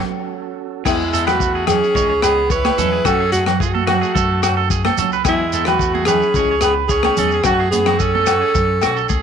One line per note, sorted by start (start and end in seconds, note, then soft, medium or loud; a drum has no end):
0.00 0.84 C#4 medium
0.00 0.84 F#4 medium
0.00 0.84 A4 medium
0.85 1.81 E2 medium
0.85 1.02 F#3 medium
0.85 1.34 G#3 medium
0.85 1.03 B3 medium
0.85 1.31 E4 medium
0.85 1.03 E4 medium
0.85 1.11 G#4 medium
0.85 1.04 G#4 medium
0.85 kick medium
0.85 cross-stick medium
0.85 crash medium
0.85 low agogo medium
0.85 shekere medium
1.12 1.31 B3 soft
1.12 1.30 E4 soft
1.12 1.29 G#4 soft
1.12 1.26 A4 medium
1.12 closed hi-hat medium
1.12 shekere medium
1.27 1.66 F#4 medium
1.27 1.53 B4 medium
1.27 cross-stick medium
1.27 low conga medium
1.27 low agogo medium
1.27 shekere soft
1.32 1.70 A3 medium
1.40 kick medium
1.40 shekere medium
1.55 1.67 G#4 medium
1.67 1.86 B3 soft
1.67 1.85 E4 soft
1.67 1.84 G#4 medium
1.67 2.18 G#4 medium
1.67 cross-stick medium
1.67 closed hi-hat soft
1.67 low conga medium
1.67 low agogo medium
1.67 shekere medium
1.71 2.21 C#4 medium
1.84 shekere soft
1.94 2.67 C#2 loud
1.94 2.12 E3 medium
1.94 2.12 G#3 medium
1.94 2.13 C#4 medium
1.94 2.12 G#4 medium
1.94 2.08 C#5 medium
1.94 kick medium
1.94 shekere medium
2.10 2.22 C#5 medium
2.22 2.41 G#3 soft
2.22 2.56 B3 medium
2.22 2.41 C#4 soft
2.22 2.40 G#4 soft
2.22 2.52 G#4 medium
2.22 2.49 B4 medium
2.22 cross-stick medium
2.22 closed hi-hat medium
2.22 low agogo medium
2.22 shekere medium
2.50 3.07 E4 medium
2.50 3.07 B4 medium
2.50 2.64 C#5 medium
2.50 kick medium
2.50 shekere medium
2.65 2.77 C#5 medium
2.65 cross-stick medium
2.65 high conga medium
2.65 low agogo medium
2.78 3.02 E2 medium
2.78 2.96 G#3 soft
2.78 2.95 C#4 medium
2.78 2.95 G#4 medium
2.78 2.92 A4 medium
2.78 closed hi-hat soft
2.78 low conga medium
2.78 shekere medium
2.92 3.04 G#4 medium
3.05 4.01 F#2 loud
3.05 3.22 A3 medium
3.05 3.33 C#4 medium
3.05 3.23 C#4 medium
3.05 3.19 F#4 medium
3.05 3.23 F#4 medium
3.05 3.31 A4 loud
3.05 kick medium
3.05 cross-stick medium
3.05 low agogo medium
3.05 shekere medium
3.20 3.46 G#4 medium
3.32 3.47 A3 medium
3.32 3.44 F#4 medium
3.32 3.50 F#4 medium
3.32 closed hi-hat soft
3.32 shekere medium
3.36 3.52 C#4 soft
3.46 3.59 F#4 medium
3.46 cross-stick medium
3.46 low conga medium
3.46 low agogo medium
3.46 shekere soft
3.60 4.95 A3 medium
3.60 4.95 F#4 medium
3.60 3.74 G#4 medium
3.60 kick medium
3.60 shekere medium
3.75 3.86 A4 medium
3.75 high conga medium
3.87 4.06 C#4 soft
3.87 4.01 F#4 medium
3.87 4.05 F#4 medium
3.87 cross-stick medium
3.87 closed hi-hat soft
3.87 low conga medium
3.87 low agogo medium
4.01 4.14 G#4 medium
4.01 shekere soft
4.15 4.87 F#2 loud
4.15 4.41 A4 medium
4.15 kick medium
4.15 shekere medium
4.42 4.61 C#4 medium
4.42 4.60 F#4 medium
4.42 4.57 F#4 medium
4.42 cross-stick medium
4.42 closed hi-hat soft
4.42 low agogo medium
4.42 shekere medium
4.57 4.70 A4 medium
4.70 4.84 G#4 medium
4.70 kick medium
4.70 shekere medium
4.85 4.98 A4 medium
4.85 cross-stick medium
4.85 high conga medium
4.85 low agogo medium
4.97 5.22 C#2 medium
4.97 5.15 F#4 soft
4.97 5.12 A4 medium
4.97 closed hi-hat soft
4.97 low conga medium
4.97 shekere medium
5.01 5.17 C#4 soft
5.12 5.25 B4 medium
5.12 shekere soft
5.25 6.21 E2 loud
5.25 5.43 F#3 medium
5.25 5.44 B3 medium
5.25 5.69 E4 medium
5.25 5.52 G#4 medium
5.25 kick medium
5.25 cross-stick medium
5.25 low agogo medium
5.25 shekere medium
5.29 5.70 G#3 medium
5.29 5.44 E4 medium
5.29 5.44 G#4 medium
5.52 5.71 G#4 soft
5.52 5.66 A4 medium
5.52 closed hi-hat soft
5.52 shekere medium
5.57 5.73 B3 soft
5.57 5.72 E4 soft
5.65 6.06 A3 medium
5.65 6.05 F#4 medium
5.65 5.93 B4 medium
5.65 cross-stick medium
5.65 low conga medium
5.65 low agogo medium
5.65 shekere soft
5.79 kick medium
5.79 shekere medium
5.95 6.07 G#4 medium
5.95 high conga medium
6.05 6.58 C#4 medium
6.05 6.58 G#4 medium
6.05 6.25 G#4 medium
6.05 6.34 B4 medium
6.05 cross-stick medium
6.05 closed hi-hat soft
6.05 low conga medium
6.05 low agogo medium
6.05 shekere medium
6.11 6.27 B3 soft
6.11 6.26 E4 soft
6.22 shekere soft
6.34 7.07 C#2 loud
6.34 6.53 E3 medium
6.34 6.54 G#3 medium
6.34 6.50 C#5 medium
6.34 kick medium
6.34 shekere medium
6.39 6.55 C#4 medium
6.39 6.54 G#4 medium
6.51 6.63 C#5 medium
6.61 6.76 B3 medium
6.61 6.74 G#4 medium
6.61 6.81 G#4 soft
6.61 6.90 B4 medium
6.61 cross-stick medium
6.61 closed hi-hat soft
6.61 low agogo medium
6.61 shekere medium
6.67 6.82 G#3 soft
6.67 6.82 C#4 soft
6.88 7.45 C#4 medium
6.88 7.45 G#4 medium
6.88 7.04 C#5 medium
6.88 kick medium
6.88 shekere medium
7.03 7.17 C#5 medium
7.03 cross-stick medium
7.03 high conga medium
7.03 low agogo medium
7.17 7.41 E2 medium
7.17 7.36 G#3 soft
7.17 7.36 C#4 soft
7.17 7.35 G#4 soft
7.17 7.32 A4 medium
7.17 closed hi-hat medium
7.17 low conga medium
7.17 shekere medium
7.31 7.46 G#4 medium
7.31 shekere soft
7.43 8.41 F#2 medium
7.43 7.70 A3 medium
7.43 7.63 A3 medium
7.43 7.63 C#4 medium
7.43 7.70 F#4 medium
7.43 7.59 F#4 medium
7.43 kick medium
7.43 cross-stick medium
7.43 low agogo medium
7.43 shekere medium
7.48 7.64 F#4 medium
7.60 7.86 G#4 medium
7.71 7.99 B3 medium
7.71 7.90 F#4 soft
7.71 8.00 G#4 medium
7.71 closed hi-hat medium
7.71 high conga medium
7.71 shekere medium
7.76 7.91 C#4 soft
7.86 8.00 F#4 medium
7.86 cross-stick medium
7.86 low conga medium
7.86 low agogo medium
7.98 9.22 C#4 medium
7.98 8.14 G#4 medium
7.98 9.22 A4 medium
7.98 kick medium
7.98 shekere medium
8.15 8.27 A4 medium
8.15 high conga medium
8.26 8.41 F#4 medium
8.26 8.45 F#4 medium
8.26 cross-stick medium
8.26 closed hi-hat soft
8.26 low agogo medium
8.26 shekere medium
8.31 8.46 C#4 soft
8.42 8.54 G#4 medium
8.55 8.79 F#2 loud
8.55 muted clean electric guitar stroke medium
8.55 kick medium
8.55 shekere medium
8.81 9.09 B1 medium
8.81 8.96 F#4 medium
8.81 9.00 F#4 medium
8.81 cross-stick medium
8.81 closed hi-hat soft
8.81 low agogo medium
8.81 shekere medium
8.87 9.02 C#4 soft
8.97 9.09 A4 medium
8.97 shekere soft
9.09 9.22 C#2 medium
9.09 9.22 G#4 medium
9.09 kick medium
9.09 shekere medium